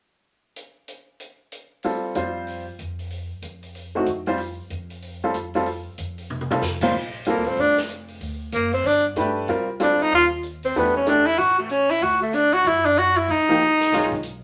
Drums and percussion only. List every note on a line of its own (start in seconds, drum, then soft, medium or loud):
0.56 closed hi-hat soft
0.88 closed hi-hat soft
1.20 closed hi-hat soft
1.52 closed hi-hat soft
1.83 open hi-hat soft
2.15 closed hi-hat soft
2.47 open hi-hat soft
2.79 closed hi-hat soft
2.99 open hi-hat soft
3.10 open hi-hat soft
3.42 closed hi-hat soft
3.63 open hi-hat soft
3.75 open hi-hat soft
4.06 closed hi-hat soft
4.26 open hi-hat soft
4.38 open hi-hat soft
4.70 closed hi-hat soft
4.90 open hi-hat soft
5.02 open hi-hat soft
5.34 closed hi-hat soft
5.54 open hi-hat soft
5.66 open hi-hat soft
5.98 closed hi-hat soft
6.18 open hi-hat soft
6.30 high tom soft
6.41 high tom soft
6.51 high tom medium
6.61 snare soft
6.81 kick medium
6.81 crash medium
7.25 closed hi-hat soft
7.44 open hi-hat soft
7.57 open hi-hat soft
7.77 snare soft
7.89 closed hi-hat soft
8.08 open hi-hat soft
8.21 open hi-hat soft
8.52 closed hi-hat soft
8.72 open hi-hat soft
8.84 open hi-hat soft
9.16 closed hi-hat soft
9.48 open hi-hat soft
9.80 closed hi-hat soft
9.99 open hi-hat soft
10.12 open hi-hat soft
10.43 closed hi-hat soft
10.63 open hi-hat soft
10.75 open hi-hat soft
11.06 closed hi-hat soft
11.26 open hi-hat soft
11.38 open hi-hat soft
11.69 closed hi-hat soft
11.89 open hi-hat soft
12.01 open hi-hat soft
12.33 closed hi-hat soft
12.53 open hi-hat soft
12.64 open hi-hat soft
12.96 closed hi-hat soft
13.28 open hi-hat soft
13.60 closed hi-hat soft
13.80 snare soft
13.80 open hi-hat soft
13.92 snare soft
13.92 open hi-hat soft
14.12 kick soft
14.23 closed hi-hat soft